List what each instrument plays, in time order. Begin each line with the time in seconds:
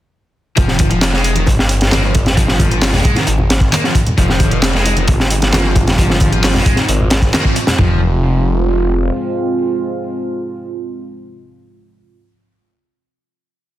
0.56 detuned saw bass F1, overdriven electric guitar F3, kick, closed hi-hat, high bongo
0.68 snare
0.79 kick, closed hi-hat, high conga
0.90 overdriven electric guitar F3, closed hi-hat, high bongo
1.01 snare, clap, closed hi-hat
1.13 overdriven electric guitar G#3, snare, high bongo
1.24 closed hi-hat
1.35 overdriven electric guitar D#3, closed hi-hat, high conga
1.46 detuned saw bass G1, kick, closed hi-hat, high bongo
1.59 snare
1.68 closed hi-hat, high bongo
1.71 closed hi-hat
1.81 snare, closed hi-hat
1.92 overdriven electric guitar A#3, snare, clap, closed hi-hat, high conga
2.03 overdriven electric guitar F3, high bongo
2.14 kick, closed hi-hat
2.26 snare, closed hi-hat, high bongo, low conga
2.37 overdriven electric guitar F3, kick, closed hi-hat
2.48 snare
2.59 kick, closed hi-hat, high bongo, high conga
2.71 overdriven electric guitar F3, closed hi-hat
2.82 snare, clap, closed hi-hat, open hi-hat, high bongo
2.93 overdriven electric guitar G#3, snare, low conga
3.05 kick, closed hi-hat
3.14 overdriven electric guitar D#3, snare, closed hi-hat, high bongo, high conga
3.27 detuned saw bass G#1, closed hi-hat
3.38 high bongo, low conga
3.50 snare, closed hi-hat
3.61 kick, closed hi-hat
3.72 overdriven electric guitar A#3, clap, closed hi-hat, high bongo, high conga
3.84 overdriven electric guitar F3, snare
3.94 kick, closed hi-hat, high bongo
4.07 closed hi-hat, low conga
4.17 detuned saw bass F1, overdriven electric guitar F3, analog synth pad G#3 C4 F4, kick, closed hi-hat
4.28 snare, high bongo
4.40 kick, closed hi-hat, high conga
4.51 overdriven electric guitar F3, closed hi-hat, high bongo
4.62 snare, clap, closed hi-hat
4.74 overdriven electric guitar G#3, snare
4.85 closed hi-hat, high bongo
4.97 overdriven electric guitar D#3, closed hi-hat, high conga
5.08 detuned saw bass G1, kick, closed hi-hat, high bongo
5.20 snare
5.30 closed hi-hat
5.42 snare, closed hi-hat, high bongo
5.53 overdriven electric guitar A#3, snare, clap, closed hi-hat, high conga
5.65 overdriven electric guitar F3, high bongo
5.75 kick, closed hi-hat
5.87 snare, closed hi-hat, low conga
5.98 overdriven electric guitar F3, kick, closed hi-hat, high bongo
6.10 snare
6.20 kick, closed hi-hat, high bongo, high conga
6.32 overdriven electric guitar F3, closed hi-hat
6.44 snare, clap, closed hi-hat, open hi-hat
6.54 overdriven electric guitar G#3, snare, high bongo, low conga
6.66 kick, closed hi-hat
6.76 overdriven electric guitar D#3, snare, closed hi-hat, high bongo, high conga
6.88 detuned saw bass G#1, closed hi-hat
7.00 low conga
7.10 snare, closed hi-hat, high bongo
7.22 kick, closed hi-hat
7.33 overdriven electric guitar A#3, snare, clap, closed hi-hat, high bongo, high conga
7.45 overdriven electric guitar F3, kick
7.56 closed hi-hat
7.67 snare, closed hi-hat, high bongo, low conga
7.79 detuned saw bass F1, overdriven electric guitar F3, analog synth pad G#3 C4 F4, kick, floor tom